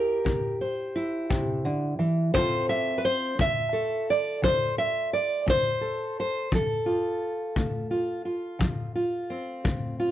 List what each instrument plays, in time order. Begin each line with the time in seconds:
Already playing: steel-string acoustic guitar E4 G4 A#4
0.25 steel-string acoustic guitar C3, kick
0.61 steel-string acoustic guitar C5
0.96 steel-string acoustic guitar E4
1.30 steel-string acoustic guitar C3, kick
1.65 steel-string acoustic guitar D3
1.99 steel-string acoustic guitar E3
2.34 steel-string acoustic guitar F3 C4 F4 A4 C5, kick
2.69 steel-string acoustic guitar E5
2.98 steel-string acoustic guitar B4
3.05 steel-string acoustic guitar C5
3.39 steel-string acoustic guitar C4 E5, kick
3.73 steel-string acoustic guitar A4
4.10 steel-string acoustic guitar D5
4.42 steel-string acoustic guitar F3 C5, kick
4.78 steel-string acoustic guitar E5
5.13 steel-string acoustic guitar D5
5.46 steel-string acoustic guitar C4 C5, kick
5.81 steel-string acoustic guitar A4
6.20 steel-string acoustic guitar C5
6.52 steel-string acoustic guitar F3 A4, kick
6.86 steel-string acoustic guitar F4
7.56 steel-string acoustic guitar A3, kick
7.91 steel-string acoustic guitar F4
8.25 steel-string acoustic guitar F4
8.59 steel-string acoustic guitar F3, kick
8.95 steel-string acoustic guitar F4
9.30 steel-string acoustic guitar C4
9.64 steel-string acoustic guitar A3, kick
10.00 steel-string acoustic guitar F4